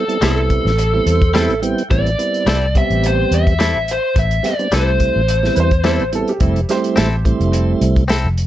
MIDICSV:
0, 0, Header, 1, 7, 480
1, 0, Start_track
1, 0, Key_signature, 0, "minor"
1, 0, Tempo, 561798
1, 1632, Time_signature, 4, 2, 24, 8
1, 7236, End_track
2, 0, Start_track
2, 0, Title_t, "Lead electric guitar"
2, 0, Program_c, 0, 29
2, 0, Note_on_c, 0, 69, 77
2, 178, Note_off_c, 0, 69, 0
2, 207, Note_on_c, 0, 69, 73
2, 1365, Note_off_c, 0, 69, 0
2, 1635, Note_on_c, 0, 74, 96
2, 2369, Note_off_c, 0, 74, 0
2, 2372, Note_on_c, 0, 76, 101
2, 2609, Note_off_c, 0, 76, 0
2, 2621, Note_on_c, 0, 72, 90
2, 2853, Note_off_c, 0, 72, 0
2, 2854, Note_on_c, 0, 76, 95
2, 3337, Note_off_c, 0, 76, 0
2, 3344, Note_on_c, 0, 72, 77
2, 3553, Note_off_c, 0, 72, 0
2, 3579, Note_on_c, 0, 76, 107
2, 3790, Note_off_c, 0, 76, 0
2, 3814, Note_on_c, 0, 74, 75
2, 4027, Note_off_c, 0, 74, 0
2, 4062, Note_on_c, 0, 72, 71
2, 5213, Note_off_c, 0, 72, 0
2, 7236, End_track
3, 0, Start_track
3, 0, Title_t, "Upright piano"
3, 0, Program_c, 1, 0
3, 4744, Note_on_c, 1, 71, 54
3, 4771, Note_off_c, 1, 71, 0
3, 4784, Note_on_c, 1, 72, 81
3, 5234, Note_off_c, 1, 72, 0
3, 5255, Note_on_c, 1, 69, 78
3, 5365, Note_off_c, 1, 69, 0
3, 5376, Note_on_c, 1, 67, 61
3, 5709, Note_off_c, 1, 67, 0
3, 5726, Note_on_c, 1, 67, 71
3, 5732, Note_on_c, 1, 72, 85
3, 6646, Note_off_c, 1, 67, 0
3, 6655, Note_off_c, 1, 72, 0
3, 7236, End_track
4, 0, Start_track
4, 0, Title_t, "Clean electric guitar"
4, 0, Program_c, 2, 27
4, 182, Note_on_c, 2, 55, 70
4, 190, Note_on_c, 2, 60, 75
4, 195, Note_on_c, 2, 64, 79
4, 200, Note_on_c, 2, 69, 82
4, 338, Note_off_c, 2, 55, 0
4, 342, Note_off_c, 2, 60, 0
4, 345, Note_off_c, 2, 64, 0
4, 348, Note_off_c, 2, 69, 0
4, 1143, Note_on_c, 2, 55, 79
4, 1151, Note_on_c, 2, 60, 88
4, 1156, Note_on_c, 2, 64, 86
4, 1161, Note_on_c, 2, 69, 85
4, 1299, Note_off_c, 2, 55, 0
4, 1303, Note_off_c, 2, 60, 0
4, 1306, Note_off_c, 2, 64, 0
4, 1308, Note_off_c, 2, 69, 0
4, 2107, Note_on_c, 2, 55, 72
4, 2114, Note_on_c, 2, 60, 83
4, 2119, Note_on_c, 2, 64, 73
4, 2125, Note_on_c, 2, 69, 81
4, 2261, Note_off_c, 2, 55, 0
4, 2265, Note_off_c, 2, 60, 0
4, 2267, Note_off_c, 2, 64, 0
4, 2270, Note_off_c, 2, 69, 0
4, 3066, Note_on_c, 2, 55, 67
4, 3073, Note_on_c, 2, 60, 73
4, 3079, Note_on_c, 2, 64, 79
4, 3085, Note_on_c, 2, 69, 77
4, 3220, Note_off_c, 2, 55, 0
4, 3224, Note_off_c, 2, 60, 0
4, 3227, Note_off_c, 2, 64, 0
4, 3230, Note_off_c, 2, 69, 0
4, 4031, Note_on_c, 2, 55, 80
4, 4038, Note_on_c, 2, 60, 70
4, 4044, Note_on_c, 2, 64, 82
4, 4049, Note_on_c, 2, 69, 80
4, 4183, Note_off_c, 2, 55, 0
4, 4187, Note_off_c, 2, 60, 0
4, 4190, Note_off_c, 2, 64, 0
4, 4192, Note_off_c, 2, 69, 0
4, 4989, Note_on_c, 2, 55, 76
4, 4995, Note_on_c, 2, 60, 72
4, 5002, Note_on_c, 2, 64, 90
4, 5009, Note_on_c, 2, 69, 75
4, 5142, Note_off_c, 2, 55, 0
4, 5145, Note_off_c, 2, 60, 0
4, 5149, Note_off_c, 2, 64, 0
4, 5152, Note_off_c, 2, 69, 0
4, 5945, Note_on_c, 2, 60, 77
4, 5955, Note_on_c, 2, 64, 75
4, 5965, Note_on_c, 2, 69, 90
4, 6101, Note_off_c, 2, 60, 0
4, 6106, Note_off_c, 2, 64, 0
4, 6111, Note_off_c, 2, 69, 0
4, 6904, Note_on_c, 2, 60, 77
4, 6916, Note_on_c, 2, 64, 79
4, 6925, Note_on_c, 2, 69, 91
4, 7061, Note_off_c, 2, 60, 0
4, 7067, Note_off_c, 2, 64, 0
4, 7071, Note_off_c, 2, 69, 0
4, 7236, End_track
5, 0, Start_track
5, 0, Title_t, "Tonewheel organ"
5, 0, Program_c, 3, 16
5, 70, Note_on_c, 3, 55, 63
5, 72, Note_on_c, 3, 60, 58
5, 73, Note_on_c, 3, 59, 60
5, 73, Note_on_c, 3, 64, 76
5, 153, Note_off_c, 3, 55, 0
5, 154, Note_off_c, 3, 60, 0
5, 154, Note_off_c, 3, 64, 0
5, 155, Note_off_c, 3, 59, 0
5, 188, Note_on_c, 3, 59, 58
5, 188, Note_on_c, 3, 60, 57
5, 189, Note_on_c, 3, 55, 65
5, 190, Note_on_c, 3, 64, 67
5, 614, Note_off_c, 3, 59, 0
5, 614, Note_off_c, 3, 60, 0
5, 615, Note_off_c, 3, 55, 0
5, 615, Note_off_c, 3, 64, 0
5, 798, Note_on_c, 3, 55, 85
5, 799, Note_on_c, 3, 59, 78
5, 799, Note_on_c, 3, 64, 88
5, 801, Note_on_c, 3, 60, 72
5, 911, Note_on_c, 3, 72, 68
5, 1051, Note_off_c, 3, 55, 0
5, 1051, Note_off_c, 3, 59, 0
5, 1051, Note_off_c, 3, 64, 0
5, 1052, Note_off_c, 3, 60, 0
5, 1135, Note_off_c, 3, 72, 0
5, 1149, Note_on_c, 3, 55, 82
5, 1152, Note_on_c, 3, 60, 79
5, 1152, Note_on_c, 3, 76, 70
5, 1153, Note_on_c, 3, 59, 72
5, 1154, Note_on_c, 3, 64, 92
5, 1324, Note_off_c, 3, 55, 0
5, 1326, Note_off_c, 3, 59, 0
5, 1326, Note_off_c, 3, 60, 0
5, 1326, Note_off_c, 3, 64, 0
5, 1375, Note_off_c, 3, 76, 0
5, 1386, Note_on_c, 3, 55, 83
5, 1386, Note_on_c, 3, 59, 84
5, 1386, Note_on_c, 3, 79, 64
5, 1387, Note_on_c, 3, 60, 72
5, 1388, Note_on_c, 3, 64, 100
5, 1562, Note_off_c, 3, 55, 0
5, 1562, Note_off_c, 3, 59, 0
5, 1563, Note_off_c, 3, 60, 0
5, 1564, Note_off_c, 3, 64, 0
5, 1612, Note_off_c, 3, 79, 0
5, 1622, Note_on_c, 3, 55, 73
5, 1624, Note_on_c, 3, 60, 66
5, 1625, Note_on_c, 3, 59, 67
5, 1627, Note_on_c, 3, 64, 79
5, 1800, Note_off_c, 3, 55, 0
5, 1802, Note_off_c, 3, 59, 0
5, 1802, Note_off_c, 3, 60, 0
5, 1803, Note_off_c, 3, 64, 0
5, 1865, Note_on_c, 3, 55, 71
5, 1867, Note_on_c, 3, 60, 60
5, 1867, Note_on_c, 3, 64, 73
5, 1869, Note_on_c, 3, 59, 65
5, 2212, Note_off_c, 3, 55, 0
5, 2213, Note_off_c, 3, 60, 0
5, 2213, Note_off_c, 3, 64, 0
5, 2214, Note_off_c, 3, 59, 0
5, 2354, Note_on_c, 3, 55, 69
5, 2354, Note_on_c, 3, 67, 83
5, 2355, Note_on_c, 3, 60, 64
5, 2356, Note_on_c, 3, 59, 69
5, 3028, Note_off_c, 3, 55, 0
5, 3029, Note_off_c, 3, 59, 0
5, 3029, Note_off_c, 3, 60, 0
5, 3029, Note_off_c, 3, 67, 0
5, 3785, Note_on_c, 3, 55, 67
5, 3785, Note_on_c, 3, 60, 67
5, 3788, Note_on_c, 3, 59, 57
5, 3790, Note_on_c, 3, 67, 72
5, 3879, Note_off_c, 3, 55, 0
5, 3879, Note_off_c, 3, 60, 0
5, 3881, Note_off_c, 3, 59, 0
5, 3881, Note_off_c, 3, 67, 0
5, 3923, Note_on_c, 3, 60, 62
5, 3924, Note_on_c, 3, 62, 72
5, 3925, Note_on_c, 3, 59, 61
5, 3926, Note_on_c, 3, 55, 66
5, 3999, Note_off_c, 3, 60, 0
5, 4000, Note_off_c, 3, 59, 0
5, 4000, Note_off_c, 3, 62, 0
5, 4001, Note_off_c, 3, 55, 0
5, 4032, Note_on_c, 3, 55, 70
5, 4034, Note_on_c, 3, 57, 58
5, 4035, Note_on_c, 3, 60, 58
5, 4037, Note_on_c, 3, 64, 69
5, 4457, Note_off_c, 3, 55, 0
5, 4458, Note_off_c, 3, 57, 0
5, 4458, Note_off_c, 3, 60, 0
5, 4459, Note_off_c, 3, 64, 0
5, 4637, Note_on_c, 3, 60, 74
5, 4638, Note_on_c, 3, 55, 83
5, 4638, Note_on_c, 3, 59, 79
5, 4642, Note_on_c, 3, 64, 88
5, 4891, Note_off_c, 3, 55, 0
5, 4891, Note_off_c, 3, 59, 0
5, 4891, Note_off_c, 3, 60, 0
5, 4893, Note_off_c, 3, 64, 0
5, 4993, Note_on_c, 3, 59, 76
5, 4994, Note_on_c, 3, 55, 82
5, 4995, Note_on_c, 3, 64, 98
5, 4996, Note_on_c, 3, 60, 76
5, 5166, Note_off_c, 3, 59, 0
5, 5167, Note_off_c, 3, 55, 0
5, 5168, Note_off_c, 3, 60, 0
5, 5168, Note_off_c, 3, 64, 0
5, 5234, Note_on_c, 3, 64, 90
5, 5235, Note_on_c, 3, 55, 88
5, 5236, Note_on_c, 3, 59, 71
5, 5236, Note_on_c, 3, 60, 79
5, 5407, Note_off_c, 3, 55, 0
5, 5407, Note_off_c, 3, 64, 0
5, 5408, Note_off_c, 3, 59, 0
5, 5408, Note_off_c, 3, 60, 0
5, 5472, Note_on_c, 3, 55, 88
5, 5473, Note_on_c, 3, 57, 83
5, 5474, Note_on_c, 3, 60, 75
5, 5474, Note_on_c, 3, 64, 103
5, 5646, Note_off_c, 3, 55, 0
5, 5647, Note_off_c, 3, 57, 0
5, 5647, Note_off_c, 3, 60, 0
5, 5647, Note_off_c, 3, 64, 0
5, 5714, Note_on_c, 3, 55, 83
5, 5717, Note_on_c, 3, 57, 71
5, 5717, Note_on_c, 3, 60, 76
5, 5719, Note_on_c, 3, 64, 95
5, 6057, Note_off_c, 3, 55, 0
5, 6059, Note_off_c, 3, 57, 0
5, 6059, Note_off_c, 3, 60, 0
5, 6059, Note_off_c, 3, 64, 0
5, 6195, Note_on_c, 3, 55, 83
5, 6195, Note_on_c, 3, 57, 74
5, 6196, Note_on_c, 3, 64, 90
5, 6197, Note_on_c, 3, 60, 72
5, 6870, Note_off_c, 3, 55, 0
5, 6870, Note_off_c, 3, 57, 0
5, 6871, Note_off_c, 3, 60, 0
5, 6871, Note_off_c, 3, 64, 0
5, 7236, End_track
6, 0, Start_track
6, 0, Title_t, "Fingered electric bass"
6, 0, Program_c, 4, 33
6, 188, Note_on_c, 4, 36, 82
6, 486, Note_off_c, 4, 36, 0
6, 556, Note_on_c, 4, 33, 90
6, 840, Note_off_c, 4, 33, 0
6, 909, Note_on_c, 4, 40, 74
6, 1274, Note_off_c, 4, 40, 0
6, 1274, Note_on_c, 4, 33, 84
6, 1470, Note_off_c, 4, 33, 0
6, 1633, Note_on_c, 4, 33, 84
6, 1825, Note_off_c, 4, 33, 0
6, 2106, Note_on_c, 4, 36, 89
6, 2405, Note_off_c, 4, 36, 0
6, 2479, Note_on_c, 4, 33, 88
6, 2762, Note_off_c, 4, 33, 0
6, 2831, Note_on_c, 4, 40, 73
6, 3202, Note_off_c, 4, 40, 0
6, 3202, Note_on_c, 4, 33, 80
6, 3395, Note_off_c, 4, 33, 0
6, 3557, Note_on_c, 4, 33, 95
6, 3748, Note_off_c, 4, 33, 0
6, 4036, Note_on_c, 4, 36, 84
6, 4331, Note_off_c, 4, 36, 0
6, 4408, Note_on_c, 4, 33, 83
6, 4687, Note_off_c, 4, 33, 0
6, 4757, Note_on_c, 4, 40, 77
6, 5125, Note_off_c, 4, 40, 0
6, 5125, Note_on_c, 4, 33, 83
6, 5317, Note_off_c, 4, 33, 0
6, 5474, Note_on_c, 4, 29, 83
6, 5667, Note_off_c, 4, 29, 0
6, 5960, Note_on_c, 4, 33, 87
6, 6255, Note_off_c, 4, 33, 0
6, 6324, Note_on_c, 4, 29, 88
6, 6606, Note_off_c, 4, 29, 0
6, 6675, Note_on_c, 4, 36, 74
6, 7044, Note_on_c, 4, 29, 81
6, 7057, Note_off_c, 4, 36, 0
6, 7236, Note_off_c, 4, 29, 0
6, 7236, End_track
7, 0, Start_track
7, 0, Title_t, "Drums"
7, 78, Note_on_c, 9, 42, 35
7, 164, Note_off_c, 9, 42, 0
7, 186, Note_on_c, 9, 42, 74
7, 195, Note_on_c, 9, 38, 107
7, 272, Note_off_c, 9, 42, 0
7, 280, Note_off_c, 9, 38, 0
7, 427, Note_on_c, 9, 42, 52
7, 428, Note_on_c, 9, 36, 76
7, 513, Note_off_c, 9, 36, 0
7, 513, Note_off_c, 9, 42, 0
7, 567, Note_on_c, 9, 38, 32
7, 653, Note_off_c, 9, 38, 0
7, 671, Note_on_c, 9, 42, 72
7, 756, Note_off_c, 9, 42, 0
7, 911, Note_on_c, 9, 42, 55
7, 996, Note_off_c, 9, 42, 0
7, 1039, Note_on_c, 9, 36, 75
7, 1040, Note_on_c, 9, 42, 33
7, 1125, Note_off_c, 9, 36, 0
7, 1125, Note_off_c, 9, 42, 0
7, 1150, Note_on_c, 9, 42, 65
7, 1159, Note_on_c, 9, 38, 89
7, 1236, Note_off_c, 9, 42, 0
7, 1244, Note_off_c, 9, 38, 0
7, 1281, Note_on_c, 9, 42, 29
7, 1367, Note_off_c, 9, 42, 0
7, 1391, Note_on_c, 9, 42, 59
7, 1477, Note_off_c, 9, 42, 0
7, 1524, Note_on_c, 9, 42, 38
7, 1609, Note_off_c, 9, 42, 0
7, 1631, Note_on_c, 9, 36, 101
7, 1631, Note_on_c, 9, 42, 71
7, 1716, Note_off_c, 9, 36, 0
7, 1716, Note_off_c, 9, 42, 0
7, 1764, Note_on_c, 9, 42, 39
7, 1850, Note_off_c, 9, 42, 0
7, 1873, Note_on_c, 9, 42, 54
7, 1958, Note_off_c, 9, 42, 0
7, 2001, Note_on_c, 9, 42, 34
7, 2087, Note_off_c, 9, 42, 0
7, 2109, Note_on_c, 9, 42, 78
7, 2118, Note_on_c, 9, 38, 109
7, 2195, Note_off_c, 9, 42, 0
7, 2203, Note_off_c, 9, 38, 0
7, 2351, Note_on_c, 9, 36, 74
7, 2352, Note_on_c, 9, 42, 58
7, 2437, Note_off_c, 9, 36, 0
7, 2437, Note_off_c, 9, 42, 0
7, 2482, Note_on_c, 9, 42, 37
7, 2568, Note_off_c, 9, 42, 0
7, 2594, Note_on_c, 9, 42, 76
7, 2680, Note_off_c, 9, 42, 0
7, 2834, Note_on_c, 9, 42, 59
7, 2920, Note_off_c, 9, 42, 0
7, 2964, Note_on_c, 9, 36, 72
7, 2964, Note_on_c, 9, 42, 38
7, 3049, Note_off_c, 9, 36, 0
7, 3050, Note_off_c, 9, 42, 0
7, 3074, Note_on_c, 9, 42, 70
7, 3083, Note_on_c, 9, 38, 90
7, 3159, Note_off_c, 9, 42, 0
7, 3168, Note_off_c, 9, 38, 0
7, 3316, Note_on_c, 9, 42, 65
7, 3401, Note_off_c, 9, 42, 0
7, 3554, Note_on_c, 9, 36, 98
7, 3554, Note_on_c, 9, 42, 79
7, 3639, Note_off_c, 9, 36, 0
7, 3639, Note_off_c, 9, 42, 0
7, 3682, Note_on_c, 9, 42, 42
7, 3768, Note_off_c, 9, 42, 0
7, 3795, Note_on_c, 9, 42, 61
7, 3803, Note_on_c, 9, 38, 32
7, 3880, Note_off_c, 9, 42, 0
7, 3889, Note_off_c, 9, 38, 0
7, 3923, Note_on_c, 9, 42, 38
7, 4009, Note_off_c, 9, 42, 0
7, 4031, Note_on_c, 9, 42, 76
7, 4040, Note_on_c, 9, 38, 107
7, 4116, Note_off_c, 9, 42, 0
7, 4125, Note_off_c, 9, 38, 0
7, 4271, Note_on_c, 9, 42, 61
7, 4274, Note_on_c, 9, 36, 71
7, 4357, Note_off_c, 9, 42, 0
7, 4359, Note_off_c, 9, 36, 0
7, 4515, Note_on_c, 9, 42, 77
7, 4600, Note_off_c, 9, 42, 0
7, 4651, Note_on_c, 9, 38, 31
7, 4737, Note_off_c, 9, 38, 0
7, 4751, Note_on_c, 9, 42, 54
7, 4836, Note_off_c, 9, 42, 0
7, 4879, Note_on_c, 9, 42, 38
7, 4882, Note_on_c, 9, 36, 68
7, 4964, Note_off_c, 9, 42, 0
7, 4968, Note_off_c, 9, 36, 0
7, 4988, Note_on_c, 9, 42, 65
7, 4996, Note_on_c, 9, 38, 90
7, 5073, Note_off_c, 9, 42, 0
7, 5082, Note_off_c, 9, 38, 0
7, 5120, Note_on_c, 9, 42, 30
7, 5206, Note_off_c, 9, 42, 0
7, 5234, Note_on_c, 9, 42, 58
7, 5319, Note_off_c, 9, 42, 0
7, 5363, Note_on_c, 9, 42, 35
7, 5449, Note_off_c, 9, 42, 0
7, 5470, Note_on_c, 9, 42, 69
7, 5474, Note_on_c, 9, 36, 96
7, 5555, Note_off_c, 9, 42, 0
7, 5560, Note_off_c, 9, 36, 0
7, 5605, Note_on_c, 9, 42, 34
7, 5690, Note_off_c, 9, 42, 0
7, 5716, Note_on_c, 9, 42, 54
7, 5724, Note_on_c, 9, 38, 30
7, 5801, Note_off_c, 9, 42, 0
7, 5810, Note_off_c, 9, 38, 0
7, 5844, Note_on_c, 9, 42, 36
7, 5930, Note_off_c, 9, 42, 0
7, 5956, Note_on_c, 9, 42, 81
7, 5964, Note_on_c, 9, 38, 107
7, 6041, Note_off_c, 9, 42, 0
7, 6050, Note_off_c, 9, 38, 0
7, 6196, Note_on_c, 9, 36, 72
7, 6198, Note_on_c, 9, 42, 57
7, 6281, Note_off_c, 9, 36, 0
7, 6284, Note_off_c, 9, 42, 0
7, 6328, Note_on_c, 9, 42, 36
7, 6414, Note_off_c, 9, 42, 0
7, 6436, Note_on_c, 9, 42, 76
7, 6521, Note_off_c, 9, 42, 0
7, 6677, Note_on_c, 9, 42, 61
7, 6762, Note_off_c, 9, 42, 0
7, 6804, Note_on_c, 9, 42, 41
7, 6805, Note_on_c, 9, 36, 68
7, 6889, Note_off_c, 9, 42, 0
7, 6890, Note_off_c, 9, 36, 0
7, 6915, Note_on_c, 9, 42, 66
7, 6924, Note_on_c, 9, 38, 92
7, 7001, Note_off_c, 9, 42, 0
7, 7009, Note_off_c, 9, 38, 0
7, 7156, Note_on_c, 9, 42, 60
7, 7236, Note_off_c, 9, 42, 0
7, 7236, End_track
0, 0, End_of_file